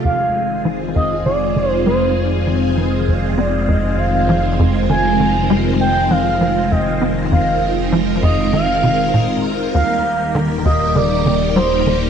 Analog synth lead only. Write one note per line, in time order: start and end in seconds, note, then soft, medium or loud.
0.04 0.61 F5 loud
0.96 1.24 D#5 loud
1.26 1.70 D5 loud
1.70 1.82 C5 loud
1.87 2.29 C5 medium
3.38 3.70 D5 medium
3.68 4.00 D#5 loud
3.99 4.59 F5 loud
4.89 5.46 G#5 loud
5.80 6.12 G5 loud
6.11 6.73 F5 loud
6.71 7.17 D#5 medium
7.32 7.88 F5 loud
8.23 8.51 D#5 loud
8.53 9.40 F5 loud
9.74 10.31 F5 loud
10.65 10.97 D#5 loud
10.95 11.55 D5 loud
11.56 11.98 C5 loud